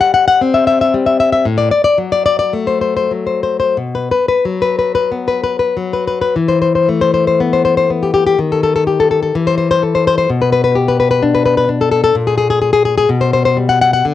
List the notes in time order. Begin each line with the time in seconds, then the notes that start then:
Already playing: G3
0.01 F#5
0.14 F#5
0.28 F#5
0.41 C4
0.54 E5
0.67 E5
0.81 E5
0.94 G3
1.06 E5
1.20 E5
1.32 E5
1.45 A2
1.58 D5
1.71 D5
1.84 D5
1.98 F#3
2.12 D5
2.26 D5
2.39 D5
2.53 A3
2.67 C5
2.81 C5
2.97 C5
3.11 F#3
3.27 C5
3.43 C5
3.60 C5
3.77 B2
3.95 B4
4.12 B4
4.29 B4
4.45 F#3
4.62 B4
4.79 B4
4.95 B4
5.12 B3
5.28 B4
5.44 B4
5.59 B4
5.77 F#3
5.93 B4
6.07 B4
6.21 B4
6.36 E3
6.48 C5
6.61 C5
6.75 C5
6.88 A3
7.01 C5
7.14 C5
7.27 C5
7.40 B3
7.53 C5
7.65 C5
7.77 C5
7.90 B3
8.03 G4
8.14 G4
8.27 G4
8.39 D#3
8.52 A4
8.63 A4
8.76 A4
8.87 G4
9.00 A4
9.11 A4
9.23 A4
9.35 E3
9.47 C5
9.58 C5
9.71 C5
9.83 A4
9.95 C5
10.07 C5
10.18 C5
10.30 B2
10.42 B4
10.52 B4
10.64 B4
10.75 G4
10.88 B4
11.00 B4
11.11 B4
11.22 D4
11.34 B4
11.45 B4
11.57 B4
11.69 D4
11.81 A4
11.91 A4
12.03 A4
12.15 A#2
12.27 G#4
12.37 G#4
12.50 G#4
12.61 G#4
12.73 G#4
12.85 G#4
12.97 G#4
13.09 B2
13.21 C5
13.33 C5
13.45 C5
13.57 G3
13.69 F#5
13.81 F#5
13.93 F#5
14.05 D3